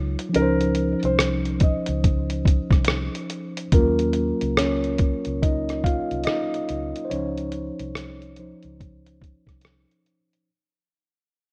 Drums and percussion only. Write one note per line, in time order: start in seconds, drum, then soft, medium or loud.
0.19 closed hi-hat medium
0.34 closed hi-hat medium
0.61 closed hi-hat soft
0.75 closed hi-hat medium
1.03 closed hi-hat soft
1.19 cross-stick loud
1.19 closed hi-hat medium
1.45 closed hi-hat soft
1.60 kick medium
1.60 closed hi-hat medium
1.86 closed hi-hat medium
2.04 kick medium
2.04 closed hi-hat medium
2.30 closed hi-hat soft
2.45 kick medium
2.45 closed hi-hat medium
2.71 kick medium
2.71 cross-stick soft
2.71 closed hi-hat soft
2.85 cross-stick loud
2.85 closed hi-hat medium
3.15 closed hi-hat soft
3.30 closed hi-hat medium
3.57 closed hi-hat medium
3.72 kick loud
3.72 closed hi-hat medium
3.99 closed hi-hat soft
4.13 closed hi-hat soft
4.41 closed hi-hat soft
4.57 cross-stick loud
4.57 closed hi-hat medium
4.84 closed hi-hat soft
4.98 kick medium
4.98 closed hi-hat medium
5.25 closed hi-hat soft
5.43 kick medium
5.43 closed hi-hat medium
5.69 cross-stick soft
5.69 closed hi-hat soft
5.84 kick medium
5.84 closed hi-hat medium
6.11 closed hi-hat soft
6.24 cross-stick loud
6.24 closed hi-hat medium
6.54 closed hi-hat soft
6.69 closed hi-hat medium
6.96 closed hi-hat medium
7.11 closed hi-hat medium
7.38 closed hi-hat soft
7.52 closed hi-hat soft
7.79 closed hi-hat soft
7.95 cross-stick loud
7.95 closed hi-hat medium
8.22 closed hi-hat soft
8.36 closed hi-hat medium
8.63 closed hi-hat soft
8.80 kick medium
8.80 closed hi-hat medium
9.06 closed hi-hat soft
9.22 kick medium
9.22 closed hi-hat medium
9.47 kick medium
9.47 cross-stick soft
9.47 closed hi-hat soft
9.61 cross-stick loud
9.61 closed hi-hat medium
9.91 closed hi-hat soft
10.06 closed hi-hat medium
10.33 closed hi-hat medium